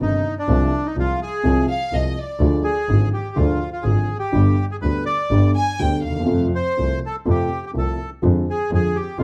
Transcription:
0.00 G1 G2 C3 D#3 G3 D4 D#4
0.39 D4
0.48 C2 C3 F3 G#3 F4
0.86 D#4
0.96 C2 C3 F3 G#3 F4
1.22 G#4
1.43 C2 C3 F3 G#3 F4
1.69 F5
1.92 C2 C3 F3 G#3 F4 D#5
2.18 D5
2.40 D2 D3 F3 G#3 F4
2.64 G#4
2.89 G#1 G#2 D3 F3 G#3 F4
3.13 G4
3.36 D2 D3 F3 G#3 F4
3.73 F4
3.83 G#1 G#2 D3 F3 G#3 F4 G#4
4.19 G4
4.32 G1 G2 D3 G3 B3 G4
4.71 G#4
4.82 D2 D3 G3 B3 G4 B4
5.06 D5
5.30 G1 G2 D3 G3 B3 G4
5.56 G#5
5.79 D2 D3 G3 B3 G4 G5
6.04 D#2 F5
6.09 D2
6.15 D#2
6.20 E2
6.25 F2 C3 F3 A3 F4
6.30 F2
6.55 C5
6.77 C2 C3 F3 A3 F4
7.06 A4
7.25 F2 C3 F3 A3 F4
7.30 G4
7.66 G4
7.73 C2 C3 F3 A3 F4
7.78 A4
8.22 F2 D3 F3 G#3 F4
8.50 G#4
8.71 F2 D3 F3 G#3 F4
8.75 G#4
8.96 G4
9.19 F2 D3 F3 G#3 F4

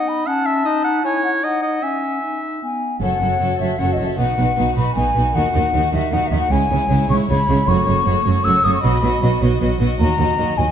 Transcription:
Already playing: D#4 D#5
0.08 B5
0.27 C#4 F#5 A5
0.46 E5
0.65 D#4 D#5
0.84 F#5
1.03 E4 C#5 G#5
1.24 F#5
1.43 D#4 D#5 F#5
1.63 D#5
1.82 C#4 E5 G#5
2.22 D#4
2.62 B3 G#5
3.01 F#1 F#2 F#4 A4 C#5 F#5
3.20 F#1 F#2 F#4 A4 C#5
3.40 F#1 F#2 F#4 A4 C#5
3.59 F#1 F#2 F#4 A4 C#5 E5
3.78 F#1 F#2 F#4 A4 C#5 F#5
3.93 D#5
3.99 F#1 F#2 F#4 A4 C#5
4.05 E5
4.17 B1 B2 D#4 F#4 B4 F#5
4.38 B1 B2 D#4 F#4 B4
4.57 B1 B2 D#4 F#4 B4
4.76 B1 B2 D#4 F#4 B4 B5
4.95 B1 B2 D#4 F#4 B4 G#5
5.15 B1 B2 D#4 F#4 B4
5.34 D#2 D#3 D#4 F#4 A#4 F#5
5.54 D#2 D#3 D#4 F#4 A#4
5.74 D#2 D#3 D#4 F#4 A#4
5.93 D#2 D#3 D#4 F#4 A#4 E5
6.11 D#2 D#3 D#4 F#4 A#4 F#5
6.27 E5
6.31 D#2 D#3 D#4 F#4 A#4
6.39 F#5
6.51 C#2 C#3 G#3 E4 C#5 G#5
6.71 C#2 C#3 G#3 E4 C#5
6.90 C#2 C#3 G#3 E4 C#5
7.09 C#2 C#3 G#3 E4 C#5 C#6
7.28 C#2 C#3 G#3 E4 C#5 B5
7.48 C#2 C#3 G#3 E4 C#5
7.67 F#1 F#2 A3 F#4 C#5 C#6
7.87 F#1 F#2 A3 F#4 C#5
8.06 F#1 F#2 A3 F#4 C#5
8.25 F#1 F#2 A3 F#4 C#5
8.44 F#1 F#2 A3 F#4 C#5 E6
8.63 F#1 F#2 A3 F#4 C#5 D#6
8.74 C#6
8.82 B1 B2 F#3 F#4 D#5 B5
9.02 B1 B2 F#3 F#4 D#5
9.21 B1 B2 F#3 F#4 D#5
9.40 B1 B2 F#3 F#4 D#5
9.60 B1 B2 F#3 F#4 D#5
9.79 B1 B2 F#3 F#4 D#5
9.99 D#2 F#3 F#4 D#5 A#5
10.18 D#2 F#3 F#4 D#5
10.38 D#2 F#3 F#4 D#5
10.57 D#2 F#3 F#4 D#5 G#5

